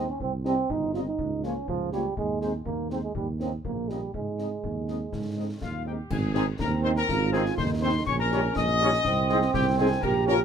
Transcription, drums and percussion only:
0.20 concert bass drum medium
0.45 snare soft
0.70 concert bass drum medium
0.94 snare soft
1.19 concert bass drum medium
1.43 snare soft
1.68 concert bass drum medium
1.92 snare soft
2.17 concert bass drum medium
2.41 snare soft
2.65 concert bass drum medium
2.90 snare soft
3.15 concert bass drum medium
3.40 snare soft
3.65 concert bass drum medium
3.90 snare soft
4.14 concert bass drum medium
4.39 snare soft
4.64 concert bass drum medium
4.88 snare soft
5.13 concert bass drum medium
5.13 snare soft
5.61 concert bass drum medium
5.61 snare soft
6.11 concert bass drum medium
6.11 crash medium
6.35 snare medium
6.59 concert bass drum medium
6.59 snare medium
6.96 snare medium
7.09 concert bass drum medium
7.09 snare medium
7.33 snare medium
7.46 snare medium
7.58 concert bass drum medium
7.58 snare medium
8.07 concert bass drum medium
8.07 crash soft
8.31 snare medium
8.56 concert bass drum medium
8.56 snare medium
8.93 snare medium
9.05 concert bass drum medium
9.05 snare medium
9.29 snare medium
9.42 snare medium
9.54 concert bass drum medium
9.54 snare medium
10.03 concert bass drum medium
10.03 crash soft
10.28 snare medium

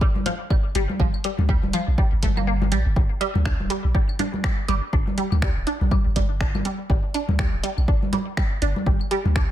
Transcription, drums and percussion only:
0.01 kick loud
0.16 high conga medium
0.26 closed hi-hat medium
0.26 low conga medium
0.50 kick loud
0.50 claves medium
0.75 closed hi-hat medium
0.90 high conga medium
1.00 kick loud
1.14 claves medium
1.24 closed hi-hat medium
1.39 low conga medium
1.49 kick loud
1.63 high conga medium
1.73 closed hi-hat medium
1.73 claves medium
1.98 kick loud
2.23 kick medium
2.23 closed hi-hat medium
2.23 low conga medium
2.37 high conga medium
2.37 claves medium
2.62 low conga medium
2.72 closed hi-hat medium
2.96 kick loud
3.21 closed hi-hat medium
3.35 low conga medium
3.45 finger snap loud
3.45 kick loud
3.45 claves medium
3.60 high conga medium
3.70 closed hi-hat medium
3.95 kick loud
4.09 claves medium
4.19 closed hi-hat medium
4.19 low conga medium
4.34 high conga medium
4.44 finger snap medium
4.44 kick loud
4.68 closed hi-hat medium
4.68 claves medium
4.93 kick loud
5.07 high conga medium
5.18 closed hi-hat medium
5.32 low conga medium
5.32 claves medium
5.42 finger snap loud
5.42 kick loud
5.67 closed hi-hat medium
5.81 high conga medium
5.91 kick loud
5.91 claves medium
6.16 kick medium
6.16 closed hi-hat loud
6.16 low conga loud
6.41 finger snap medium
6.41 kick loud
6.55 high conga medium
6.55 low conga medium
6.55 claves medium
6.65 closed hi-hat medium
6.90 kick loud
7.14 closed hi-hat medium
7.14 claves medium
7.29 high conga medium
7.29 low conga medium
7.39 finger snap medium
7.39 kick loud
7.64 closed hi-hat medium
7.78 claves medium
7.88 kick loud
8.03 high conga medium
8.13 closed hi-hat loud
8.13 low conga medium
8.37 finger snap medium
8.37 kick loud
8.37 claves medium
8.62 closed hi-hat loud
8.76 high conga medium
8.86 kick loud
9.01 claves medium
9.11 closed hi-hat medium
9.26 low conga medium
9.36 finger snap medium
9.36 kick loud

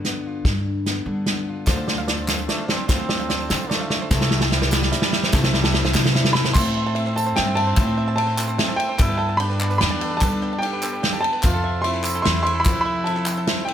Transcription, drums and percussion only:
0.05 snare medium
0.05 closed hi-hat soft
0.45 kick medium
0.45 snare medium
0.45 closed hi-hat medium
0.86 snare medium
0.86 closed hi-hat medium
1.26 snare medium
1.26 closed hi-hat medium
1.66 kick loud
1.66 snare medium
1.66 clap medium
1.66 closed hi-hat medium
1.66 tambourine medium
1.77 tambourine soft
1.88 snare medium
1.97 clap soft
1.97 tambourine soft
2.08 snare medium
2.08 closed hi-hat medium
2.18 tambourine soft
2.28 snare medium
2.28 clap medium
2.28 tambourine medium
2.39 clap soft
2.49 snare medium
2.49 clap soft
2.49 closed hi-hat medium
2.59 clap soft
2.69 snare medium
2.69 clap soft
2.89 kick loud
2.89 snare medium
2.89 clap medium
2.89 closed hi-hat medium
2.89 tambourine medium
3.00 clap soft
3.09 snare medium
3.20 clap soft
3.20 tambourine soft
3.30 snare medium
3.30 closed hi-hat medium
3.40 tambourine soft
3.50 snare medium
3.50 clap loud
3.50 tambourine medium
3.62 clap soft
3.71 snare medium
3.71 clap soft
3.71 closed hi-hat medium
3.82 clap soft
3.90 snare medium
3.90 clap soft
4.11 kick loud
4.11 snare medium
4.11 clap medium
4.11 closed hi-hat medium
4.11 tambourine loud
4.21 snare medium
4.21 clap soft
4.21 tambourine soft
4.31 snare medium
4.41 snare loud
4.41 clap soft
4.41 tambourine soft
4.52 snare medium
4.52 closed hi-hat medium
4.62 snare loud
4.62 tambourine soft
4.71 snare loud
4.71 clap loud
4.71 tambourine medium
4.83 snare loud
4.83 clap soft
4.92 snare loud
4.92 clap soft
4.92 closed hi-hat medium
5.02 snare loud
5.02 clap soft
5.13 snare loud
5.13 clap soft
5.23 snare loud
5.33 kick loud
5.33 snare loud
5.33 clap loud
5.33 tambourine loud
5.44 snare medium
5.44 clap soft
5.54 snare loud
5.64 snare loud
5.64 clap soft
5.74 snare loud
5.74 clap soft
5.84 snare loud
5.84 clap soft
5.84 tambourine soft
5.94 snare loud
5.94 clap loud
5.94 tambourine medium
6.05 snare loud
6.05 clap soft
6.05 tambourine soft
6.15 snare loud
6.25 snare loud
6.35 snare loud
6.45 snare loud
6.45 clap soft
6.45 tambourine soft
6.55 kick loud
6.55 clap loud
6.55 crash loud
6.55 tambourine loud
6.96 ride medium
7.06 clap soft
7.17 tambourine medium
7.26 clap soft
7.26 tambourine soft
7.36 snare medium
7.36 ride medium
7.57 ride medium
7.76 kick loud
7.76 clap medium
7.76 ride medium
7.76 tambourine loud
8.18 ride medium
8.30 clap soft
8.37 clap loud
8.37 tambourine loud
8.49 clap soft
8.49 tambourine soft
8.59 snare medium
8.59 ride medium
8.69 clap soft
8.80 ride medium
8.99 kick loud
8.99 clap medium
8.99 ride medium
8.99 tambourine loud
9.40 ride medium
9.52 clap soft
9.60 clap loud
9.71 clap soft
9.71 tambourine soft
9.81 snare medium
9.81 ride medium
9.91 clap soft
10.01 ride medium
10.21 kick loud
10.21 clap loud
10.21 ride medium
10.21 tambourine loud
10.43 clap soft
10.62 ride medium
10.62 tambourine soft
10.82 clap loud
10.82 tambourine loud
11.04 snare medium
11.04 ride medium
11.13 tambourine soft
11.24 ride medium
11.34 clap soft
11.43 kick loud
11.43 clap loud
11.43 ride medium
11.43 tambourine loud
11.84 ride medium
11.95 clap soft
12.04 clap loud
12.04 tambourine loud
12.16 clap soft
12.16 tambourine soft
12.25 snare medium
12.25 ride medium
12.37 clap soft
12.46 ride medium
12.65 kick loud
12.65 clap loud
12.65 ride medium
12.65 tambourine loud
13.07 ride medium
13.17 clap soft
13.26 clap loud
13.26 tambourine loud
13.37 clap soft
13.37 tambourine soft
13.47 snare medium
13.47 ride medium
13.57 clap soft
13.68 ride medium

